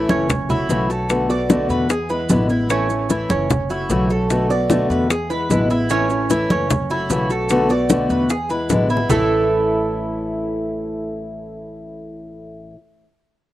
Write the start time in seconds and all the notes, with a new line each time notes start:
Already playing: E3 A3 C#4 E4
0.09 F#1 C#4, high conga, maracas
0.30 muted steel-string acoustic guitar stroke, high bongo, high conga, low conga, maracas
0.49 A3 C#4 E4 F#4, high bongo, high conga, low conga, maracas
0.69 B1 C#3 E3 A3 C#4 F#4, high bongo, low bongo, high conga, maracas
0.89 A3 C#4 F#4 A4, high bongo, maracas
1.09 B2 D3 A3 B3 F#4, high bongo, high conga, maracas
1.29 A3 B3 F#4 D5, high bongo, high conga, maracas
1.49 B2 D3 A3 B3 F#4, high bongo, high conga, maracas
1.69 E2 B4, high conga, maracas
1.89 G#4, muted steel-string acoustic guitar stroke, high bongo, high conga, maracas
2.09 G#3 B3 E4 B4, high bongo, high conga, maracas
2.29 A1 B2 D3 G#3 B3 E4, high bongo, low bongo, high conga, maracas
2.49 G#3 B3 E4, high bongo, high conga, maracas
2.69 E3 A3 C#4 E4, high bongo, high conga, maracas
2.89 A3 C#4 E4, high bongo, high conga, maracas
3.09 E3 A3 C#4 E4, high bongo, high conga, maracas
3.30 F#1 C#4, high conga, maracas
3.50 muted steel-string acoustic guitar stroke, high bongo, high conga, low conga, maracas
3.70 A3 C#4 E4 F#4, high bongo, high conga, maracas
3.89 B1 C#3 E3 A3 C#4 F#4, high bongo, low bongo, high conga, maracas
4.10 A3 C#4 F#4 A4, high bongo, maracas
4.30 B2 D3 A3 B3 F#4, high bongo, high conga, maracas
4.49 A3 B3 F#4 D5, high bongo, high conga, maracas
4.70 B2 D3 A3 B3 F#4, high bongo, high conga, maracas
4.89 E2 B4, high conga, maracas
5.10 G#4, muted steel-string acoustic guitar stroke, high bongo, high conga, maracas
5.30 G#3 B3 E4 B4, high bongo, high conga, maracas
5.49 A1 B2 D3 G#3 B3 E4, high bongo, low bongo, high conga, maracas
5.70 G#3 B3 E4, high bongo, high conga, maracas
5.89 E3 A3 C#4 E4, high bongo, high conga, maracas
6.10 A3 C#4 E4, high bongo, high conga, maracas
6.30 E3 A3 C#4 E4, high bongo, high conga, maracas
6.50 F#1 C#4, high conga, maracas
6.69 muted steel-string acoustic guitar stroke, high bongo, high conga, low conga, maracas
6.90 A3 C#4 E4 F#4, high bongo, high conga, maracas
7.09 B1 C#3 E3 A3 C#4 F#4, high bongo, low bongo, high conga, maracas
7.29 A3 C#4 F#4 A4, high bongo, maracas
7.49 B2 D3 A3 B3 F#4, high bongo, high conga, maracas
7.70 A3 B3 F#4 D5, high bongo, high conga, maracas
7.90 B2 D3 A3 B3 F#4, high bongo, high conga, maracas
8.10 E2 B4, high conga, maracas
8.29 G#4, muted steel-string acoustic guitar stroke, high bongo, high conga, maracas
8.50 G#3 B3 E4 B4, high bongo, high conga, maracas
8.69 A1 B2 D3 G#3 B3 E4, high bongo, high conga, maracas
8.90 B3 E4, high conga, maracas
8.97 low bongo
9.09 A1 A2 E3 A3 C#4 E4 A4, low bongo, low conga, maracas